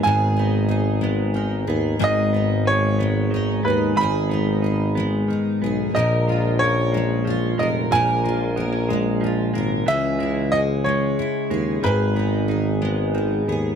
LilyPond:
<<
  \new Staff \with { instrumentName = "Grand piano" } { \time 6/8 \key gis \minor \tempo 4. = 61 gis''2~ gis''8 r8 | dis''4 cis''4. b'8 | b''2~ b''8 r8 | dis''4 cis''4. dis''8 |
gis''2~ gis''8 r8 | e''4 dis''8 cis''4. | b'2~ b'8 r8 | }
  \new Staff \with { instrumentName = "Steel-string acoustic guitar" } { \time 6/8 \key gis \minor <gis, gis dis' gis'>8 dis'8 gis'8 gis8 dis'8 gis'8 | <gis, gis'>8 dis'8 gis'8 gis8 dis'8 gis'8 | <gis, gis'>8 dis'8 gis'8 gis8 dis'8 gis'8 | <ais, ais'>8 eis'8 ais'8 gis8 eis'8 ais'8 |
<ais, ais'>8 eis'8 ais'8 gis8 eis'8 ais'8 | <cis gis'>8 e'8 gis'8 gis8 e'8 gis'8 | <gis, gis'>8 dis'8 gis'8 gis8 dis'8 gis'8 | }
  \new Staff \with { instrumentName = "Clean electric guitar" } { \time 6/8 \key gis \minor <dis b dis'>8 b8 dis'8 b8 dis8 b8 | dis8 b8 dis'8 b8 dis8 b8 | dis8 b8 dis'8 b8 dis8 b8 | eis8 gis8 cis'8 gis8 eis8 gis8 |
eis8 gis8 b16 cis'16 gis8 eis8 gis8 | e8 gis8 cis'8 gis4 gis8 | dis8 b8 dis'8 b8 dis8 b8 | }
  \new Staff \with { instrumentName = "Tuba" } { \clef bass \time 6/8 \key gis \minor gis,,2~ gis,,8 dis,8 | gis,,2~ gis,,8 dis,8 | gis,,2 r8 b,,8 | ais,,2~ ais,,8 eis,,8 |
ais,,2~ ais,,8 gis,,8 | cis,2 r8 dis,8 | gis,,2~ gis,,8 dis,8 | }
>>